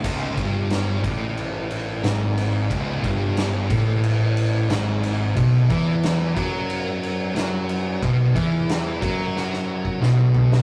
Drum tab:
CC |x---------------|----------------|----------------|----------------|
RD |--x-x-x-x-x-x-x-|x-x-x-x-x-x-x-x-|x-x-x-x-x-x-x-x-|x-x-x-x---------|
SD |----o-------o-o-|----o-------o-o-|----o-------o---|----o---oo--o--o|
FT |----------------|----------------|----------------|--------------o-|
BD |o-o---o---------|o-o---o---------|o-o---o---------|o-o---o----o----|